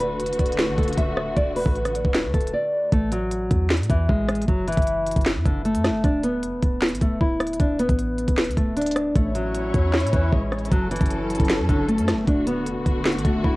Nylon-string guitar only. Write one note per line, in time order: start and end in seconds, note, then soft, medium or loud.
0.00 0.55 B4 medium
0.78 0.95 A4 medium
0.98 1.34 E5 medium
1.36 1.54 D5 medium
1.56 2.11 B4 medium
2.34 2.51 A4 medium
2.53 2.90 D5 medium
2.93 3.10 A3 medium
3.12 3.67 F#3 medium
3.90 4.07 E3 medium
4.09 4.46 G#3 loud
4.48 4.65 F#3 medium
4.68 5.23 E3 medium
5.46 5.63 D3 medium
5.65 6.02 A3 medium
6.04 6.21 D4 medium
6.23 6.78 B3 medium
7.01 7.19 A3 medium
7.21 7.58 E4 medium
7.60 7.77 D4 medium
7.79 8.34 B3 medium
8.57 8.74 A3 medium
8.77 9.13 D4 medium
9.16 9.33 A3 medium
9.35 9.90 F#3 medium
10.13 10.30 E3 medium
10.33 10.69 G#3 loud
10.72 10.89 F#3 medium
10.91 11.46 E3 medium
11.69 11.86 D3 medium
11.88 12.25 A3 medium
12.27 12.45 D4 medium
12.47 13.02 B3 medium
13.25 13.42 A3 medium
13.44 13.56 E4 medium